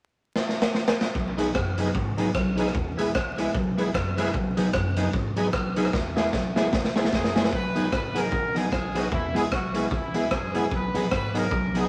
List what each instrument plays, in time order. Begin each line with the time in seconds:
0.36 snare
0.49 snare
0.62 snare
0.74 snare
0.88 snare
1.01 snare
1.15 upright bass B1, kick
1.37 hollow-body jazz guitar F#3 B3 D#4 G#4, tonewheel organ D#4 G#4 B4, closed hi-hat
1.55 upright bass F#1, tonewheel organ G#4 B4, kick, cross-stick
1.78 hollow-body jazz guitar F#3 B3 D#4 G#4, tonewheel organ D#4 G#4 B4, closed hi-hat
1.95 upright bass G#1, muted hollow-body jazz guitar stroke, kick
2.17 hollow-body jazz guitar F#3 B3 D#4 G#4, tonewheel organ D#4 G#4 B4, closed hi-hat
2.35 upright bass B1, kick, cross-stick
2.56 hollow-body jazz guitar F#3 B3 D#4, tonewheel organ D#4 G#4 B4, closed hi-hat
2.60 hollow-body jazz guitar G#4
2.67 cross-stick
2.75 upright bass E2, kick
2.97 hollow-body jazz guitar G#3 B3 E4 G#4, tonewheel organ E4 G#4 B4, closed hi-hat
3.15 upright bass C#2, tonewheel organ G#4 B4, kick, cross-stick
3.37 hollow-body jazz guitar G#3 B3 E4 G#4, tonewheel organ E4 G#4 B4, closed hi-hat
3.55 upright bass B1, muted hollow-body jazz guitar stroke, kick
3.77 hollow-body jazz guitar G#3 B3 E4 G#4, tonewheel organ E4 G#4 B4, closed hi-hat
3.94 upright bass F#1, kick, cross-stick
4.17 hollow-body jazz guitar G#3 B3 E4 G#4, tonewheel organ E4 G#4 B4, cross-stick, closed hi-hat
4.26 cross-stick
4.34 upright bass B1, kick
4.57 hollow-body jazz guitar F#3 B3 D#4 G#4, tonewheel organ D#4 G#4 B4, closed hi-hat
4.73 upright bass F#1, tonewheel organ G#4 B4, kick, cross-stick
4.97 hollow-body jazz guitar F#3 B3 D#4 G#4, tonewheel organ D#4 G#4 B4, closed hi-hat
5.13 upright bass G#1, muted hollow-body jazz guitar stroke, kick
5.37 hollow-body jazz guitar F#3 B3 D#4 G#4, tonewheel organ D#4 G#4 B4, closed hi-hat
5.53 upright bass B1, kick, cross-stick
5.76 hollow-body jazz guitar F#3 B3 D#4 G#4, tonewheel organ D#4 G#4 B4, closed hi-hat
5.85 cross-stick
5.93 upright bass E2, kick, snare
6.16 hollow-body jazz guitar G#3 B3 E4 G#4, tonewheel organ E4 G#4 B4, snare
6.33 upright bass B1, tonewheel organ G#4 B4, kick, snare
6.55 hollow-body jazz guitar G#3 B3 E4 G#4, tonewheel organ E4 G#4 B4, snare
6.73 upright bass C#2, kick, snare
6.84 snare
6.96 hollow-body jazz guitar G#3 B3 E4 G#4, tonewheel organ E4 G#4 B4, snare
7.05 snare
7.13 upright bass F#1, horn section G#4, kick, snare
7.24 snare
7.35 hollow-body jazz guitar G#3 B3 E4 G#4, tonewheel organ E4 G#4 B4, snare
7.44 snare
7.53 upright bass B1, horn section B4, kick
7.75 upright bass A#1, hollow-body jazz guitar F#3 B3 D#4 G#4, tonewheel organ B3 D#4 G#4, closed hi-hat
7.92 upright bass G#1, horn section B4, kick, cross-stick
8.14 hollow-body jazz guitar F#3 B3 D#4 G#4, tonewheel organ B3 D#4 G#4, horn section A#4, closed hi-hat
8.31 upright bass A#1, tonewheel organ D#4 G#4, muted hollow-body jazz guitar stroke, kick
8.54 hollow-body jazz guitar F#3 B3 D#4 G#4, tonewheel organ B3 D#4 G#4, horn section G#4, closed hi-hat
8.72 upright bass B1, kick, cross-stick
8.95 hollow-body jazz guitar F#3 B3 D#4 G#4, tonewheel organ B3 D#4 G#4, horn section F#4, cross-stick, closed hi-hat
9.12 upright bass E2, horn section E4, kick
9.34 upright bass C#2, hollow-body jazz guitar G#3 B3 E4 G#4, tonewheel organ B3 E4 G#4, horn section G#4, closed hi-hat
9.52 upright bass B1, horn section F#4, kick, cross-stick
9.74 hollow-body jazz guitar G#3 B3 E4 G#4, tonewheel organ B3 E4 G#4, closed hi-hat
9.84 horn section F#4
9.91 upright bass C#2, tonewheel organ E4 G#4, horn section E4, kick
10.14 hollow-body jazz guitar G#3 B3 E4 G#4, tonewheel organ B3 E4 G#4, closed hi-hat
10.31 upright bass F#1, tonewheel organ E4 G#4, horn section G#4, kick, cross-stick
10.54 hollow-body jazz guitar G#3 B3 E4 G#4, tonewheel organ B3 E4 G#4, closed hi-hat
10.71 upright bass B1, horn section B4, kick
10.94 upright bass A#1, hollow-body jazz guitar F#3 B3 D#4 G#4, tonewheel organ B3 D#4 G#4, closed hi-hat
11.11 upright bass G#1, horn section B4, kick, cross-stick
11.34 hollow-body jazz guitar F#3 B3 D#4 G#4, tonewheel organ B3 D#4 G#4, horn section A#4, closed hi-hat
11.51 upright bass B1, tonewheel organ D#4 G#4, kick
11.74 hollow-body jazz guitar F#3 B3 D#4 G#4, tonewheel organ B3 D#4 G#4, horn section G#4, closed hi-hat